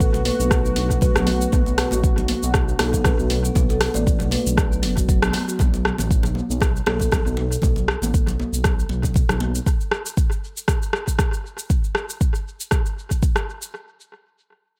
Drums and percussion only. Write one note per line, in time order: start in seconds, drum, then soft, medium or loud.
0.00 kick loud
0.00 cabasa medium
0.14 muted conga medium
0.14 low conga medium
0.14 cabasa soft
0.25 open hi-hat medium
0.25 high conga medium
0.40 cabasa medium
0.51 kick loud
0.51 cross-stick medium
0.51 muted conga soft
0.51 cabasa medium
0.65 cabasa soft
0.76 open hi-hat medium
0.76 muted conga medium
0.91 kick medium
0.91 low conga medium
0.91 cabasa medium
1.01 kick loud
1.01 muted conga soft
1.01 cabasa medium
1.16 cross-stick medium
1.16 low conga medium
1.16 cabasa soft
1.27 open hi-hat medium
1.27 muted conga soft
1.27 high conga medium
1.41 cabasa medium
1.52 kick loud
1.52 high conga medium
1.52 low conga medium
1.52 cabasa medium
1.66 muted conga medium
1.66 cabasa soft
1.78 cross-stick medium
1.78 open hi-hat medium
1.91 muted conga soft
1.91 high conga medium
1.91 cabasa medium
2.04 kick loud
2.04 cabasa medium
2.18 muted conga medium
2.18 low conga medium
2.18 cabasa soft
2.28 open hi-hat medium
2.28 high conga loud
2.43 cabasa medium
2.54 kick loud
2.54 cross-stick medium
2.54 muted conga soft
2.54 cabasa medium
2.69 cabasa soft
2.79 cross-stick medium
2.79 open hi-hat loud
2.79 muted conga medium
2.79 high conga loud
2.93 kick medium
2.93 high conga medium
2.93 cabasa medium
3.04 kick loud
3.04 cross-stick medium
3.04 muted conga soft
3.04 low conga medium
3.04 cabasa medium
3.19 cabasa soft
3.30 open hi-hat medium
3.30 muted conga medium
3.45 cabasa medium
3.55 kick loud
3.55 high conga loud
3.55 low conga medium
3.55 cabasa medium
3.70 muted conga medium
3.70 cabasa soft
3.81 cross-stick medium
3.81 open hi-hat loud
3.94 muted conga soft
3.94 high conga medium
3.94 cabasa medium
4.07 kick loud
4.07 cabasa medium
4.20 muted conga medium
4.20 low conga loud
4.20 cabasa soft
4.31 open hi-hat medium
4.31 high conga loud
4.47 cabasa medium
4.57 kick loud
4.57 cross-stick medium
4.57 muted conga soft
4.57 cabasa medium
4.72 cabasa soft
4.83 open hi-hat loud
4.83 muted conga medium
4.97 kick medium
4.97 low conga medium
4.97 cabasa medium
5.09 kick loud
5.09 muted conga soft
5.09 cabasa medium
5.22 cross-stick loud
5.22 low conga loud
5.22 cabasa soft
5.33 open hi-hat medium
5.33 muted conga medium
5.33 high conga loud
5.49 cabasa medium
5.59 kick loud
5.59 high conga medium
5.59 low conga medium
5.59 cabasa medium
5.74 muted conga medium
5.74 cabasa soft
5.85 cross-stick medium
5.98 muted conga soft
5.98 high conga medium
5.98 cabasa medium
6.11 kick loud
6.11 cabasa medium
6.23 muted conga medium
6.23 low conga loud
6.23 cabasa soft
6.35 high conga medium
6.51 cabasa medium
6.60 kick loud
6.60 cross-stick medium
6.60 muted conga soft
6.60 cabasa medium
6.76 cabasa soft
6.86 cross-stick loud
6.86 muted conga medium
6.86 high conga medium
6.99 kick medium
6.99 high conga medium
6.99 cabasa medium
7.12 kick loud
7.12 cross-stick medium
7.12 muted conga soft
7.12 low conga medium
7.12 cabasa medium
7.27 cabasa soft
7.37 muted conga medium
7.52 cabasa medium
7.62 kick loud
7.62 high conga medium
7.62 low conga loud
7.62 cabasa medium
7.76 muted conga soft
7.76 cabasa soft
7.88 cross-stick medium
8.02 muted conga soft
8.02 high conga loud
8.02 cabasa medium
8.14 kick loud
8.14 cabasa medium
8.27 muted conga medium
8.27 low conga loud
8.27 cabasa soft
8.40 high conga loud
8.54 cabasa medium
8.64 kick loud
8.64 cross-stick medium
8.64 muted conga soft
8.64 cabasa medium
8.79 cabasa soft
8.89 muted conga medium
9.03 kick medium
9.03 low conga medium
9.03 cabasa medium
9.14 kick loud
9.14 muted conga soft
9.14 cabasa medium
9.29 cross-stick medium
9.29 low conga medium
9.29 cabasa soft
9.40 muted conga medium
9.40 high conga medium
9.55 cabasa medium
9.66 kick loud
9.66 cabasa medium
9.81 cabasa soft
9.91 cross-stick medium
10.06 cabasa medium
10.17 kick loud
10.17 cabasa medium
10.32 cabasa soft
10.57 cabasa medium
10.68 kick loud
10.68 cross-stick medium
10.68 cabasa medium
10.83 cabasa soft
10.93 cross-stick medium
11.08 kick medium
11.08 cabasa medium
11.19 kick loud
11.19 cross-stick medium
11.19 cabasa medium
11.33 cabasa soft
11.59 cabasa medium
11.70 kick loud
11.70 cabasa medium
11.84 cabasa soft
11.95 cross-stick medium
12.10 cabasa medium
12.21 kick loud
12.21 cabasa medium
12.35 cabasa soft
12.60 cabasa medium
12.71 kick loud
12.71 cross-stick medium
12.71 cabasa medium
12.86 cabasa soft
13.11 kick medium
13.11 cabasa medium
13.23 kick loud
13.23 cabasa medium
13.36 cross-stick medium
13.36 cabasa soft
13.62 cabasa medium